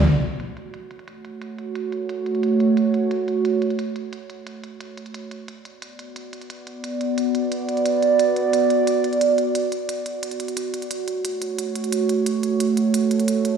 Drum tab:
HH |x-x-x-x-x-xxx-x-|x-x-x-x-x-xxx-x-|x-x-x-x-x-xxx-x-|x-x-x-x-x-xxx-x-|

HH |x-x-x-x-x-xxx-x-|x-x-x-x-x-xxx-x-|x-x-x-x-x-xxx-x-|x-x-x-x-xxxxx-xx|

HH |x-x-x-x-x-xxx-x-|x-x-x-x-x-xxx-x-|